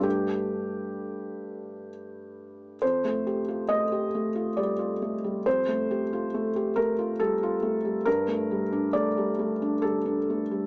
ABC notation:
X:1
M:3/4
L:1/16
Q:1/4=68
K:Fmix
V:1 name="Felt piano"
G8 z4 | c4 e4 d4 | c6 B2 A4 | B4 d4 A4 |]
V:2 name="Felt piano"
[G,,G,A,D]12 | F,, A, G F A, G A, F G, F A, G, | F,, A, G F A, G A, F G, F A, G, | G,, A, G, D A, G, A, D G, D A, G, |]